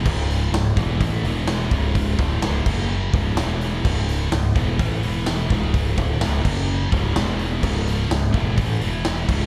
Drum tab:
CC |x-------|---x----|x-------|---x----|
HH |-ooooooo|ooo--ooo|-ooooooo|ooo--ooo|
SD |--o---o-|--o---oo|--o---oo|--o---o-|
BD |o--oo--o|oo-o-o--|o--oo--o|oo-o-o--|

CC |x------x|
HH |-oooooo-|
SD |--o---oo|
BD |o--oo--o|